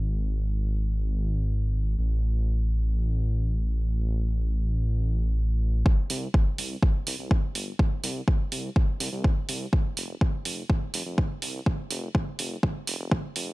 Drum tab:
HH |--------|--------|--------|-o-o-o-o|
BD |--------|--------|--------|o-o-o-o-|

HH |-o-o-o-o|-o-o-o-o|-o-o-o-o|
BD |o-o-o-o-|o-o-o-o-|o-o-o-o-|